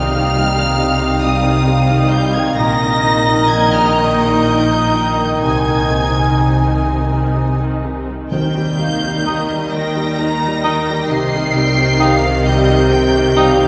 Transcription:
Already playing: double bass section C2, viola section C3 D#4, cello section C3, harp C3 D#4 G4 D#5, french horn section G3 D#4, clarinet D#4, oboe D#5, violin section F5 F6, flute G5
0.12 viola section D#3, harp G3
0.34 viola section G3, harp C4
0.57 viola section D#3, harp G4
0.79 viola section C3, harp D#5
1.01 viola section D#3, harp C5
1.23 viola section G3, harp D#5, violin section D#6
1.44 viola section D#3, harp C5
1.67 viola section C3, harp D#5
1.90 viola section D#3, harp G4
2.12 viola section G3, harp C4, violin section G6
2.35 viola section D#3, harp G3, violin section G#6
2.57 double bass section A#1, cello section A#2, harp A#2, viola section D#3 D#4, clarinet D#4, french horn section D#4, violin section D#5 A#6, oboe D#5, flute A#5
2.61 french horn section D#3
2.80 viola section D#3, harp A#3
3.05 viola section D#3, harp D#4
3.27 viola section D#3, harp G4
3.49 viola section D#3, harp D#5, violin section G#6
3.73 viola section D#3, harp G4, violin section F6
3.97 viola section D#3, harp D#5, violin section G6
4.21 viola section D#3, harp G4
4.45 viola section D#3, harp D#5
4.69 viola section D#3, harp G4
4.95 viola section D#3, harp D#4
5.19 viola section D#3, harp A#3
5.42 double bass section C2, cello section C3, viola section C3, harp C3, flute G#5, violin section G#5 G#6
5.67 viola section D#3, harp C4
5.90 viola section C3, harp D#4
6.15 viola section D#3, harp C4
6.40 viola section C3, harp D#5
6.63 viola section D#3, harp D#4
6.87 viola section C3, harp C5
7.10 viola section D#3, harp D#4
7.36 viola section C3
7.60 viola section D#3, harp D#4
7.85 viola section C3, harp C4
8.08 viola section D#3, harp D#4
8.31 double bass section D#2, harp D#3, timpani D#3, viola section D#3 D#4, cello section D#3, french horn section D#3 D#4, violin section G5 G6
8.55 viola section G3, harp A#3
8.79 viola section D#3, harp D#4, violin section F5
9.03 viola section G3, harp G4
9.26 viola section D#3, clarinet D#4, violin section D#5, oboe D#5, harp G5, flute A#5
9.50 viola section G3, harp G4
9.71 viola section D#3, harp A#4, violin section G5 A#6
9.95 viola section G3, harp G4
10.17 viola section D#3, violin section A#5
10.43 viola section G3, harp G4
10.63 viola section D#3, clarinet D#4, harp D#4, oboe D#5, violin section G5, flute A#5
10.86 viola section G3, harp A#3
11.10 double bass section C2, harp C3, cello section C3, viola section C3, french horn section G4, violin section D#5 C7
11.32 viola section D#3, harp G3
11.54 viola section G3, harp D#4, violin section G5
11.77 viola section D#3, harp G4
11.99 viola section C3, clarinet D#4, oboe D#5, violin section F5, flute G5
12.23 viola section D#3, harp G4
12.46 viola section G3, violin section D#5 G6
12.69 viola section D#3, harp G4
12.92 viola section C3, violin section G5
13.15 viola section D#3, harp G4
13.36 viola section G3, clarinet D#4, harp D#4, oboe D#5, violin section F5, flute G5
13.59 viola section D#3, harp G3

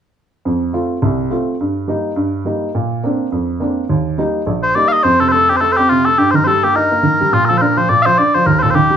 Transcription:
0.45 upright piano F2
0.73 upright piano A3 C4 F4
1.02 upright piano C2
1.30 upright piano A3 C4 F4
1.60 upright piano G2
1.88 upright piano G3 A#3 D#4
2.16 upright piano G2
2.45 upright piano G3 A#3 D#4
2.75 upright piano A#2
3.04 upright piano A#3 C4 D4
3.32 upright piano F2
3.60 upright piano A#3 C4 D4
3.89 upright piano D#2
4.18 upright piano G3 A#3 D#4
4.46 upright piano A#1
4.63 bagpipes C5
4.75 upright piano G3 A#3 D#4, bagpipes D5
4.88 bagpipes F5
4.92 bagpipes D#5
5.03 upright piano F2, bagpipes C5
5.20 upright piano C3, bagpipes A4
5.29 bagpipes A4 C5
5.33 upright piano A3
5.49 upright piano C4, bagpipes G4
5.57 bagpipes C5
5.61 upright piano A3, bagpipes A4
5.72 bagpipes C5
5.77 upright piano C4, bagpipes G4
5.89 upright piano C3, bagpipes F4
6.05 upright piano A3, bagpipes A4
6.18 upright piano G2, bagpipes G4
6.31 upright piano D#3, bagpipes C5
6.35 bagpipes A#4
6.44 upright piano G3, bagpipes A4 C5
6.63 upright piano A#3, bagpipes G4
6.75 upright piano D#4, bagpipes A#4
6.92 upright piano A#3
7.03 upright piano D#3
7.21 upright piano G3
7.33 upright piano A#2, bagpipes F4
7.45 bagpipes A#4
7.49 upright piano F3, bagpipes A4
7.58 upright piano D4, bagpipes A#4 C5
7.77 upright piano F3, bagpipes C5
7.89 upright piano A#2, bagpipes D5
8.02 upright piano F3, bagpipes C5 F5
8.18 upright piano D4, bagpipes D5
8.35 upright piano F3, bagpipes C5
8.46 upright piano D#2, bagpipes A#4
8.59 bagpipes A4 C5
8.63 upright piano A#2
8.71 bagpipes C5
8.75 upright piano D#3, bagpipes G4
8.90 upright piano G3

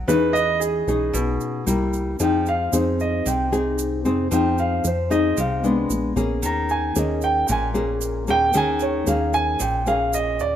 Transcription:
0.08 analog synth bass E2, nylon-string guitar E3 C#4 D#4 G#4, grand piano B4, shaker
0.33 grand piano D#5, shaker
0.60 grand piano G#4, shaker
0.87 analog synth bass B1, nylon-string guitar C#4 D#4 G#4, shaker
1.13 analog synth bass B1, nylon-string guitar B2, shaker
1.41 shaker
1.66 analog synth bass C2, nylon-string guitar G3 A#3 E4, shaker
1.93 shaker
2.20 analog synth bass F2, nylon-string guitar F3 C4 D#4 G#4, grand piano G5, shaker
2.46 grand piano F5, shaker
2.72 analog synth bass F2, nylon-string guitar C4 D#4 G#4, grand piano C5, shaker
3.00 grand piano D#5, shaker
3.26 analog synth bass C2, nylon-string guitar C3, grand piano G5, shaker
3.52 nylon-string guitar C4 D#4 G#4, shaker
3.78 shaker
4.05 analog synth bass F2, nylon-string guitar C4 D#4 G#4, shaker
4.31 analog synth bass F2, nylon-string guitar F3 C4 D#4 G#4, grand piano G5, shaker
4.58 grand piano F5, shaker
4.84 analog synth bass F2, grand piano C5, shaker
5.10 nylon-string guitar C4 D#4 G#4, grand piano D#5, shaker
5.37 analog synth bass C2, nylon-string guitar C3, grand piano F5, shaker
5.63 nylon-string guitar G#3 B3 D4, shaker
5.90 analog synth bass A#1, shaker
6.16 analog synth bass A#1, nylon-string guitar A#3 C#4 G#4, shaker
6.42 analog synth bass D#2, nylon-string guitar D#3, grand piano A#5, shaker
6.69 grand piano G#5, shaker
6.95 analog synth bass D#2, nylon-string guitar A#3 C#4 G#4, grand piano D#5, shaker
7.21 grand piano G5, shaker
7.47 analog synth bass A#1, nylon-string guitar A#2, grand piano G5, shaker
7.52 grand piano G#5
7.74 nylon-string guitar A#3 C#4 G#4, shaker
8.01 shaker
8.27 analog synth bass D#2, nylon-string guitar A#3 C#4 G#4, grand piano G5, shaker
8.53 analog synth bass D#2, nylon-string guitar D#3 A#3 C#4 G#4, grand piano G#5, shaker
8.80 grand piano C#5, shaker
9.07 analog synth bass D#2, nylon-string guitar A#3 C#4 G#4, grand piano F5, shaker
9.33 grand piano G#5, shaker
9.59 analog synth bass A#1, nylon-string guitar A#2, grand piano G5, shaker
9.86 nylon-string guitar A#3 C#4 G#4, grand piano F5, shaker
10.13 grand piano D#5, shaker
10.39 analog synth bass D#2, grand piano D5, shaker

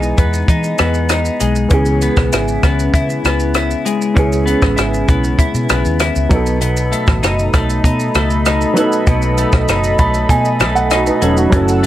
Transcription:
Already playing: fingered electric bass B1, upright piano E3 B3 D#4 G#4, clean electric guitar E3 G#3 B3 D#4
0.03 shaker
0.18 fingered electric bass E2, clean electric guitar B3, kick, closed hi-hat, shaker
0.33 shaker
0.48 fingered electric bass E3, clean electric guitar D#4, kick, closed hi-hat, shaker
0.64 shaker
0.78 fingered electric bass E2, clean electric guitar B3, cross-stick, closed hi-hat, shaker
0.94 shaker
1.09 clean electric guitar D#4, cross-stick, closed hi-hat, shaker
1.25 shaker
1.40 fingered electric bass B1, clean electric guitar G#3, closed hi-hat, shaker
1.56 shaker
1.69 fingered electric bass C#2, clean electric guitar C#3, upright piano E3 B3 C#4, kick, closed hi-hat, shaker
1.74 upright piano G#4
1.86 shaker
2.02 clean electric guitar B3, closed hi-hat, shaker
2.17 fingered electric bass B1, kick, cross-stick, shaker
2.33 fingered electric bass G#1, clean electric guitar E4, cross-stick, closed hi-hat, shaker
2.48 shaker
2.63 fingered electric bass C#2, clean electric guitar B3, kick, cross-stick, closed hi-hat, shaker
2.79 shaker
2.93 fingered electric bass C#3, clean electric guitar E4, kick, closed hi-hat, shaker
3.10 shaker
3.25 fingered electric bass C#2, clean electric guitar B3, cross-stick, closed hi-hat, shaker
3.40 shaker
3.54 clean electric guitar E4, cross-stick, closed hi-hat, shaker
3.71 shaker
3.85 clean electric guitar G#3, closed hi-hat, shaker
4.02 shaker
4.14 fingered electric bass C#2, clean electric guitar C#3, upright piano B3 C#4 E4, kick, closed hi-hat, shaker
4.19 upright piano G#4
4.32 shaker
4.46 clean electric guitar B3, closed hi-hat, shaker
4.62 fingered electric bass A1, kick, cross-stick, shaker
4.76 fingered electric bass G#1, clean electric guitar E4, cross-stick, closed hi-hat, shaker
4.94 shaker
5.08 fingered electric bass B1, clean electric guitar B3, kick, closed hi-hat, shaker
5.24 shaker
5.39 clean electric guitar E4, kick, closed hi-hat, shaker
5.54 fingered electric bass B2, shaker
5.69 fingered electric bass B1, clean electric guitar B3, cross-stick, closed hi-hat, shaker
5.85 fingered electric bass D#2, shaker
6.00 clean electric guitar E4, cross-stick, closed hi-hat, shaker
6.16 fingered electric bass C#2, shaker
6.29 fingered electric bass B1, clean electric guitar B2, upright piano F#3 B3 D#4, kick, closed hi-hat, shaker
6.34 upright piano A4
6.46 shaker
6.61 clean electric guitar B2, analog synth pad A4 D#5 B5, closed hi-hat, shaker
6.77 shaker
6.92 clean electric guitar A3, closed hi-hat, shaker
7.07 fingered electric bass A1, kick, cross-stick, shaker
7.23 fingered electric bass F#1, clean electric guitar D#4, cross-stick, closed hi-hat, shaker
7.39 shaker
7.54 fingered electric bass B1, clean electric guitar A3, kick, cross-stick, closed hi-hat, shaker
7.70 shaker
7.84 fingered electric bass B2, clean electric guitar D#4, kick, closed hi-hat, shaker
8.00 shaker
8.15 fingered electric bass C#2, clean electric guitar A3, cross-stick, closed hi-hat, shaker
8.30 shaker
8.46 clean electric guitar D#4, cross-stick, closed hi-hat, shaker
8.61 shaker
8.74 upright piano F#3 B3 D#4, clean electric guitar F#3, closed hi-hat, shaker
8.79 upright piano A4
8.92 shaker
9.07 fingered electric bass B1, clean electric guitar B2, kick, closed hi-hat, shaker
9.22 shaker
9.38 clean electric guitar A3, closed hi-hat, shaker
9.52 fingered electric bass B1, kick, cross-stick, shaker
9.68 fingered electric bass F#1, clean electric guitar D#4, cross-stick, closed hi-hat, shaker
9.84 shaker
9.99 fingered electric bass B1, clean electric guitar A3, upright piano B5, kick, closed hi-hat, shaker
10.14 shaker
10.29 fingered electric bass B2, clean electric guitar D#4, upright piano G#5, kick, closed hi-hat, shaker
10.45 shaker
10.60 fingered electric bass B1, clean electric guitar A3, cross-stick, closed hi-hat, shaker
10.75 upright piano F#5, shaker
10.91 clean electric guitar D#4, upright piano F#4 D#5, cross-stick, closed hi-hat, shaker
11.07 upright piano D#4 B4, shaker
11.22 fingered electric bass E1, clean electric guitar F#3, upright piano C#4 A4, closed hi-hat, shaker
11.37 upright piano A3 F#4, shaker
11.50 fingered electric bass F#1, clean electric guitar F#2, upright piano F#3 C#4 E4, analog synth pad A4 F#5 E6, kick, closed hi-hat, shaker
11.56 upright piano A4
11.68 shaker
11.83 clean electric guitar A3

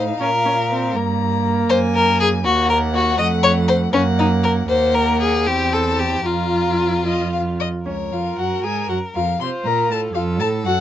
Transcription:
Already playing: cello A2, viola D#4, violin F5
0.19 cello A#2, viola C#4, violin A#4
0.46 viola C#4
0.71 viola C4
0.95 cello G2, viola A#3, violin A#5
1.69 cello F#2, violin C5 G#5
1.95 violin A#4
2.20 violin G#4
2.45 cello D#2, viola A#3, violin F#4 F#5
2.70 violin A#4
2.95 violin F#4
3.18 cello F2, viola A3, violin D#5
3.43 violin C#5
3.68 violin C5
3.93 cello F#2, viola A#3, violin C#4 F#5
4.19 violin D#4
4.43 violin A#4
4.68 cello D#2, viola A#3, violin C5 F#5
4.94 violin A#4
5.21 violin G#4
5.46 cello E2, viola C4, violin G4 G5
5.73 violin A4
5.86 violin A5
5.99 violin G4
6.25 cello F2, viola F4, violin F4 A#5
7.05 viola F4, violin D#5
7.33 violin F5
7.60 violin D#5
7.84 cello C#2, viola C#4, violin A#4 C#5
8.11 cello F2, viola F4, violin F5
8.37 cello F#2, viola F#4, violin F#5
8.63 cello G#2, viola G#4, violin G#5
8.89 cello F#2, viola F#4, violin F#5
9.14 cello F2, viola F4, violin F5
9.40 cello C3, violin F4 C6, viola C5
9.64 cello A#2, viola A#4, violin A#5
9.90 cello A2, viola A4, violin A5
10.15 cello F2, viola F4, violin A4 F5
10.40 cello A2, viola A4, violin A5
10.65 cello F#2, viola F#4, violin F#5

